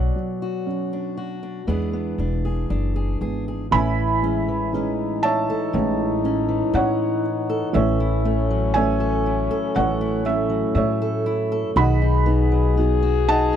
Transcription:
0.00 1.68 B2 medium
0.00 0.14 F#3 medium
0.00 1.61 F#3 medium
0.00 2.66 C#5 medium
0.00 2.66 D5 medium
0.00 2.65 F#5 medium
0.15 0.65 F#3 soft
0.42 1.16 F#4 medium
0.66 1.67 F#3 medium
0.66 1.78 C#4 soft
0.93 1.42 D4 soft
1.17 1.68 F#4 medium
1.43 1.62 D4 soft
1.67 2.11 E2 medium
1.67 3.73 E3 medium
1.67 3.81 G#3 medium
1.67 1.92 B3 soft
1.67 2.18 D4 soft
1.67 2.44 G#4 medium
1.93 3.65 B3 medium
2.18 2.65 E1 medium
2.18 2.69 D4 soft
2.45 2.95 G#4 soft
2.70 3.17 F#1 medium
2.70 3.65 D4 medium
2.96 3.20 G#4 medium
3.21 3.67 G#1 medium
3.21 3.82 B3 soft
3.21 3.46 G#4 medium
3.48 3.66 G#4 medium
3.71 5.45 A1 loud
3.71 5.73 A2 medium
3.71 4.71 E3 medium
3.71 4.48 E3 medium
3.71 4.72 C#4 medium
3.71 4.23 C#4 medium
3.71 4.74 E4 medium
3.71 7.25 E4 medium
3.71 5.22 E5 medium
3.71 5.70 G#5 medium
3.71 5.28 B5 loud
4.22 4.72 G#3 medium
4.22 4.74 C#4 medium
4.48 6.47 E3 medium
4.73 5.72 E3 medium
4.73 5.72 G#3 medium
4.73 5.73 C#4 medium
4.73 6.24 C#4 medium
4.73 7.75 D#4 medium
5.23 6.75 C#5 medium
5.23 7.20 E5 medium
5.23 6.69 A5 loud
5.50 7.49 A4 medium
5.73 6.60 A1 medium
5.73 7.68 A2 medium
5.73 7.72 E3 medium
5.73 7.84 G#3 medium
5.73 6.22 C#4 medium
6.24 7.72 C#4 medium
6.24 6.72 C#4 medium
6.48 8.50 E3 medium
6.74 7.60 A2 medium
6.74 7.68 C#4 medium
6.74 7.72 C#5 medium
6.74 7.78 F#5 medium
7.49 7.68 A4 medium
7.73 9.47 A1 loud
7.73 9.73 A2 medium
7.73 8.73 E3 medium
7.73 8.74 C#4 medium
7.73 11.49 C#4 medium
7.73 8.99 A4 medium
7.73 8.74 C#5 medium
7.73 8.74 E5 medium
8.00 9.25 E4 medium
8.25 8.74 A3 medium
8.50 10.49 F#3 medium
8.74 9.74 E3 medium
8.74 10.24 A3 medium
8.74 9.75 A3 medium
8.74 9.76 C#4 medium
8.74 9.76 C#5 medium
8.74 10.24 E5 medium
8.74 9.78 G#5 medium
9.00 9.49 A4 medium
9.26 10.00 E4 medium
9.51 9.74 A4 medium
9.75 10.62 A1 medium
9.75 11.70 A2 medium
9.75 11.76 E3 medium
9.75 11.87 A3 medium
9.75 10.24 C#4 medium
9.75 11.01 A4 medium
9.75 10.76 C#5 medium
9.75 10.27 F#5 medium
10.01 11.25 E4 medium
10.25 10.75 A3 medium
10.25 11.86 C#4 medium
10.25 10.73 E5 medium
10.50 12.51 F#3 medium
10.75 11.62 A2 medium
10.75 11.76 A3 medium
10.75 11.73 C#5 medium
10.75 11.46 E5 medium
11.02 11.51 A4 medium
11.26 11.70 E4 medium
11.52 11.70 A4 medium
11.75 13.50 B1 loud
11.75 13.56 B2 medium
11.75 13.56 D#3 medium
11.75 12.76 F#4 medium
11.75 13.02 F#4 medium
11.75 13.56 G#4 loud
11.75 13.28 D#5 medium
11.75 13.28 F#5 medium
11.75 12.73 B5 medium
12.02 13.27 D#4 medium
12.26 12.76 B3 medium
12.26 12.76 D#4 medium
12.52 13.56 F#3 medium
12.77 13.56 B3 medium
12.77 13.56 D#4 medium
12.77 13.56 F#4 medium
13.03 13.53 F#4 medium
13.28 13.56 D#4 medium
13.28 13.56 D#5 medium
13.28 13.56 F#5 medium
13.28 13.56 A5 loud
13.53 13.56 F#4 medium

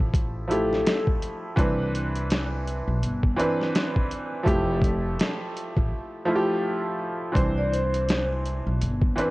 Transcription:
0.00 0.82 A1 medium
0.00 0.48 F3 medium
0.00 0.49 A3 medium
0.00 0.50 E4 medium
0.00 0.52 G4 medium
0.14 kick medium
0.14 closed hi-hat medium
0.48 1.16 F3 medium
0.48 1.17 A3 medium
0.48 1.17 E4 medium
0.48 1.18 G4 medium
0.48 1.04 A4 medium
0.48 closed hi-hat medium
0.73 snare soft
0.87 snare loud
0.87 closed hi-hat medium
1.07 kick medium
1.22 closed hi-hat medium
1.56 2.84 C2 loud
1.56 2.49 E3 medium
1.56 2.49 C4 medium
1.56 2.50 D4 medium
1.56 2.51 B4 medium
1.56 kick loud
1.56 closed hi-hat medium
1.95 closed hi-hat medium
2.15 closed hi-hat medium
2.30 snare loud
2.30 closed hi-hat medium
2.67 closed hi-hat medium
2.88 3.01 B1 medium
3.02 3.35 G1 medium
3.02 closed hi-hat medium
3.23 kick medium
3.36 4.05 E3 medium
3.36 4.05 C4 medium
3.36 4.06 D4 medium
3.36 4.07 B4 loud
3.36 closed hi-hat medium
3.61 snare soft
3.75 snare loud
3.75 closed hi-hat medium
3.96 kick medium
4.11 closed hi-hat medium
4.43 5.15 F1 loud
4.43 5.37 F3 medium
4.43 5.38 A3 medium
4.43 5.38 E4 medium
4.43 5.39 G4 medium
4.43 kick loud
4.48 closed hi-hat medium
4.82 kick medium
4.82 closed hi-hat medium
5.19 snare loud
5.19 closed hi-hat medium
5.57 closed hi-hat medium
5.77 5.91 A1 medium
5.77 kick medium
6.25 6.94 F3 medium
6.25 6.95 A3 medium
6.25 6.95 E4 medium
6.25 6.36 F4 medium
6.36 6.99 G4 medium
7.32 8.62 C2 loud
7.32 8.26 E3 medium
7.32 8.27 C4 medium
7.32 8.27 D4 medium
7.32 8.28 C5 medium
7.32 kick loud
7.37 closed hi-hat medium
7.58 7.71 D5 medium
7.72 8.26 C5 medium
7.72 closed hi-hat medium
7.94 closed hi-hat medium
8.09 snare loud
8.09 closed hi-hat medium
8.46 closed hi-hat medium
8.67 8.82 B1 medium
8.81 9.14 G1 medium
8.81 closed hi-hat medium
9.02 kick medium
9.16 9.30 E3 medium
9.16 9.30 C4 medium
9.16 9.30 D4 medium
9.16 9.30 B4 medium
9.16 closed hi-hat medium

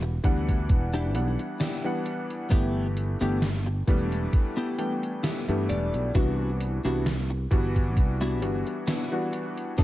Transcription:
0.00 0.18 E1 medium
0.00 muted clean electric guitar stroke medium
0.23 0.71 D2 medium
0.23 1.10 E3 medium
0.23 1.10 G3 medium
0.23 1.10 B3 medium
0.23 1.10 D4 medium
0.23 1.10 F#5 loud
0.23 muted clean electric guitar stroke soft
0.23 kick loud
0.23 closed hi-hat medium
0.48 muted clean electric guitar stroke soft
0.48 kick medium
0.48 closed hi-hat medium
0.69 1.15 E1 medium
0.69 kick loud
0.69 closed hi-hat medium
0.93 1.15 D4 loud
0.93 1.15 E4 medium
0.93 1.15 G4 loud
1.14 1.35 B1 medium
1.14 1.79 E3 medium
1.14 1.79 G3 medium
1.14 1.79 B3 medium
1.14 1.79 D4 medium
1.14 1.79 F#5 medium
1.14 closed hi-hat medium
1.39 muted clean electric guitar stroke soft
1.39 closed hi-hat medium
1.60 1.85 D4 medium
1.60 1.85 E4 medium
1.60 1.85 G4 medium
1.60 snare loud
1.60 closed hi-hat medium
1.84 2.46 E3 medium
1.84 2.46 G3 medium
1.84 2.46 B3 medium
1.84 2.47 D4 medium
1.84 2.47 F#5 medium
2.05 muted clean electric guitar stroke soft
2.05 closed hi-hat medium
2.30 closed hi-hat medium
2.50 3.15 G1 loud
2.50 3.15 E3 medium
2.50 3.15 A3 medium
2.50 2.86 B3 loud
2.50 3.16 B3 medium
2.50 3.16 D4 medium
2.50 2.86 E4 medium
2.50 2.86 G4 loud
2.50 3.16 G4 medium
2.50 kick loud
2.50 closed hi-hat medium
2.97 closed hi-hat medium
3.21 3.82 G1 medium
3.21 3.44 E3 medium
3.21 3.45 A3 medium
3.21 3.42 B3 medium
3.21 3.45 B3 medium
3.21 3.45 D4 medium
3.21 3.42 E4 medium
3.21 3.42 G4 medium
3.21 3.45 G4 medium
3.21 closed hi-hat medium
3.42 snare loud
3.42 closed hi-hat medium
3.66 muted clean electric guitar stroke medium
3.87 4.26 E1 medium
3.87 4.73 E3 medium
3.87 4.74 G3 loud
3.87 4.73 A3 medium
3.87 4.74 B3 medium
3.87 4.74 D4 medium
3.87 muted clean electric guitar stroke soft
3.87 kick loud
3.87 closed hi-hat medium
4.12 muted clean electric guitar stroke soft
4.12 closed hi-hat soft
4.33 kick loud
4.33 closed hi-hat medium
4.57 4.78 B3 loud
4.57 4.78 E4 medium
4.57 4.79 G4 loud
4.78 5.42 E3 medium
4.78 5.43 G3 medium
4.78 5.43 A3 medium
4.78 5.43 B3 medium
4.78 5.43 D4 medium
4.78 5.21 G5 medium
4.78 closed hi-hat medium
5.03 muted clean electric guitar stroke soft
5.03 closed hi-hat soft
5.23 5.48 B3 medium
5.23 5.48 E4 medium
5.23 5.48 G4 medium
5.23 5.66 E5 medium
5.23 snare loud
5.23 closed hi-hat medium
5.48 5.71 G2 loud
5.48 6.10 E3 medium
5.48 6.10 G3 medium
5.48 6.10 A3 medium
5.48 6.10 B3 medium
5.48 6.10 D4 medium
5.48 closed hi-hat soft
5.69 5.90 E1 medium
5.69 6.12 D5 medium
5.69 muted clean electric guitar stroke soft
5.69 closed hi-hat medium
5.94 6.11 B1 medium
5.94 closed hi-hat medium
6.14 6.78 C2 loud
6.14 6.79 E3 medium
6.14 6.79 G3 medium
6.14 6.50 B3 medium
6.14 6.79 B3 medium
6.14 6.50 D4 loud
6.14 6.79 D4 medium
6.14 6.50 E4 medium
6.14 6.50 F#4 loud
6.14 6.80 F#4 medium
6.14 kick loud
6.14 closed hi-hat medium
6.60 closed hi-hat medium
6.85 7.46 C2 medium
6.85 7.08 E3 medium
6.85 7.08 G3 medium
6.85 7.06 B3 medium
6.85 7.09 B3 medium
6.85 7.06 D4 medium
6.85 7.09 D4 medium
6.85 7.06 E4 medium
6.85 7.06 F#4 medium
6.85 7.09 F#4 medium
6.85 closed hi-hat medium
7.06 snare loud
7.06 closed hi-hat medium
7.30 muted clean electric guitar stroke medium
7.51 7.97 G1 medium
7.51 8.37 E3 medium
7.51 8.37 G3 medium
7.51 8.37 B3 medium
7.51 8.38 D4 medium
7.51 8.38 F#4 loud
7.51 muted clean electric guitar stroke soft
7.51 kick loud
7.51 closed hi-hat medium
7.76 muted clean electric guitar stroke soft
7.76 kick medium
7.76 closed hi-hat soft
7.97 8.42 C2 loud
7.97 kick loud
7.97 closed hi-hat medium
8.21 8.42 B3 loud
8.21 8.42 D4 medium
8.21 8.42 E4 loud
8.21 8.42 F#4 loud
8.42 8.62 G1 medium
8.42 9.06 E3 medium
8.42 9.06 G3 medium
8.42 9.06 B3 medium
8.42 9.07 D4 medium
8.42 9.07 F#4 medium
8.42 closed hi-hat medium
8.66 muted clean electric guitar stroke soft
8.66 closed hi-hat soft
8.87 9.12 B3 medium
8.87 9.12 D4 medium
8.87 9.12 E4 medium
8.87 9.12 F#4 medium
8.87 snare loud
8.87 closed hi-hat medium
9.12 9.73 E3 medium
9.12 9.73 G3 medium
9.12 9.74 B3 medium
9.12 9.74 D4 medium
9.12 9.74 F#4 medium
9.33 muted clean electric guitar stroke soft
9.33 closed hi-hat medium
9.58 closed hi-hat medium
9.78 9.84 B1 medium
9.78 9.84 F#3 medium
9.78 9.84 A3 medium
9.78 9.84 B3 loud
9.78 9.84 B3 medium
9.78 9.84 D4 loud
9.78 9.84 D4 medium
9.78 9.84 F#4 medium
9.78 9.84 A4 loud
9.78 kick loud
9.78 closed hi-hat medium

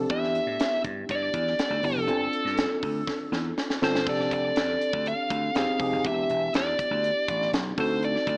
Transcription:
0.00 0.12 C4 medium
0.00 0.10 D4 medium
0.00 0.11 G4 medium
0.00 0.12 A4 medium
0.09 0.39 E2 loud
0.09 1.00 B3 medium
0.09 1.00 D4 medium
0.09 1.01 E4 medium
0.09 1.01 G4 medium
0.09 0.81 E5 loud
0.09 kick loud
0.09 closed hi-hat medium
0.24 snare soft
0.35 closed hi-hat medium
0.46 0.56 A2 medium
0.60 snare loud
0.60 closed hi-hat loud
0.84 1.03 G2 medium
0.84 kick medium
0.84 closed hi-hat medium
1.09 1.28 G2 medium
1.09 1.87 D5 medium
1.09 kick medium
1.09 closed hi-hat medium
1.34 1.53 E2 medium
1.34 kick medium
1.34 closed hi-hat medium
1.47 snare soft
1.59 snare loud
1.59 closed hi-hat loud
1.70 1.80 D2 medium
1.83 1.93 G1 medium
1.83 2.06 B3 medium
1.83 2.06 D4 medium
1.83 2.07 E4 medium
1.83 2.07 G4 medium
1.83 3.54 A4 medium
1.83 open hi-hat medium
1.95 2.07 F1 medium
2.07 2.27 G1 loud
2.07 2.98 C4 medium
2.07 2.98 D4 medium
2.07 2.99 F4 medium
2.07 2.99 A4 medium
2.07 closed hi-hat medium
2.33 closed hi-hat medium
2.45 2.64 G2 medium
2.45 snare soft
2.57 snare loud
2.57 closed hi-hat loud
2.83 3.02 D2 medium
2.83 kick medium
2.83 open hi-hat medium
3.07 kick medium
3.07 snare medium
3.32 3.51 E2 medium
3.32 snare medium
3.58 snare medium
3.70 snare medium
3.82 4.01 G1 medium
3.82 4.04 C4 medium
3.82 4.04 D4 medium
3.82 4.05 F4 medium
3.82 4.05 A4 medium
3.82 4.06 C5 medium
3.82 snare medium
3.95 snare medium
4.07 4.25 F1 loud
4.07 4.97 C4 medium
4.07 4.97 D4 medium
4.07 4.97 G4 medium
4.07 4.97 A4 medium
4.07 4.31 D5 medium
4.07 kick loud
4.07 crash medium
4.20 snare soft
4.31 4.50 F1 medium
4.31 5.08 D5 medium
4.31 kick medium
4.31 closed hi-hat medium
4.56 4.75 F2 medium
4.56 snare loud
4.56 closed hi-hat loud
4.81 closed hi-hat medium
4.93 5.12 D2 medium
4.93 kick medium
5.06 5.53 F5 loud
5.06 closed hi-hat medium
5.30 5.49 D2 medium
5.30 kick medium
5.30 closed hi-hat medium
5.55 5.65 F2 loud
5.55 5.78 C4 medium
5.55 5.78 D#4 medium
5.55 5.78 G4 medium
5.55 5.78 G#4 medium
5.55 6.06 F5 medium
5.55 snare loud
5.55 closed hi-hat loud
5.80 5.89 F1 medium
5.80 6.03 C4 medium
5.80 6.03 D#4 medium
5.80 6.03 G4 medium
5.80 6.03 G#4 medium
5.80 kick medium
5.80 open hi-hat medium
5.92 6.01 F1 medium
6.04 6.23 E1 loud
6.04 6.95 B3 medium
6.04 6.95 D4 medium
6.04 6.95 E4 medium
6.04 6.95 G4 medium
6.04 6.52 E5 medium
6.04 kick loud
6.04 closed hi-hat medium
6.30 6.48 E1 medium
6.30 closed hi-hat medium
6.54 6.73 E2 medium
6.54 7.50 D5 medium
6.54 snare loud
6.54 closed hi-hat loud
6.79 kick medium
6.79 closed hi-hat medium
6.91 7.10 D2 medium
7.04 closed hi-hat medium
7.28 7.47 A1 medium
7.28 kick loud
7.28 closed hi-hat medium
7.42 snare soft
7.53 7.72 B1 medium
7.53 snare loud
7.53 closed hi-hat medium
7.77 8.15 D2 medium
7.77 8.37 C4 medium
7.77 8.37 D#4 medium
7.77 8.37 F#4 medium
7.77 8.37 A4 medium
7.77 8.02 C5 medium
7.77 kick loud
7.77 open hi-hat medium
8.03 8.28 D5 medium
8.03 closed hi-hat medium
8.16 snare soft
8.27 8.37 D2 medium
8.27 8.37 D5 medium
8.27 kick medium
8.27 closed hi-hat medium

